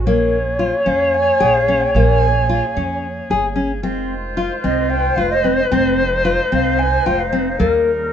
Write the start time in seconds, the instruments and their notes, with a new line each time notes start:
Already playing: woodwind section C#3
0.06 upright bass A#1, nylon-string guitar A#3, woodwind section A#3 G#4, clarinet C#5
0.59 nylon-string guitar F4
0.86 upright bass F2, nylon-string guitar C#4, flute F5
1.14 flute G#5
1.40 upright bass A#1, nylon-string guitar G#4, flute G5
1.53 flute F5
1.68 nylon-string guitar C#4
1.80 flute G5
1.94 upright bass A#1, nylon-string guitar A#3, flute G#5
2.49 nylon-string guitar F4
2.77 upright bass F2, nylon-string guitar C#4
3.30 upright bass G1, nylon-string guitar G#4
3.56 nylon-string guitar C#4
3.83 upright bass F1, woodwind section D#3 G#3 F4, nylon-string guitar C4, clarinet C5
4.37 nylon-string guitar F4
4.64 upright bass C2, nylon-string guitar C4, flute D#5
4.89 flute G5
5.15 upright bass F1, nylon-string guitar F4, flute F5
5.30 flute D#5
5.44 nylon-string guitar C4
5.59 flute D#5
5.71 upright bass F1, nylon-string guitar C4, woodwind section D#4
6.25 nylon-string guitar F4
6.52 upright bass C2, nylon-string guitar C4, flute F5
6.78 flute G#5
7.05 upright bass F1, nylon-string guitar F4, flute G5
7.19 flute F5
7.33 nylon-string guitar C4
7.47 flute F5
7.59 upright bass D#2, woodwind section C#3 G3, nylon-string guitar A#3, clarinet A#4